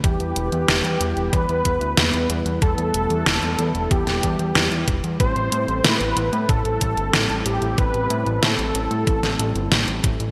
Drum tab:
HH |xxxxxxxxxxxxxxxx|xxxxxxxxxxxxxxxx|xxxxxxxxxxxxxxxx|xxxxxxxxxxxxxxxx|
SD |----o-------o---|----o----o--o---|----o-------o---|----o----o--o---|
BD |o-------o-o-----|o-------o-o---o-|o-------o-o-----|o-------o-----o-|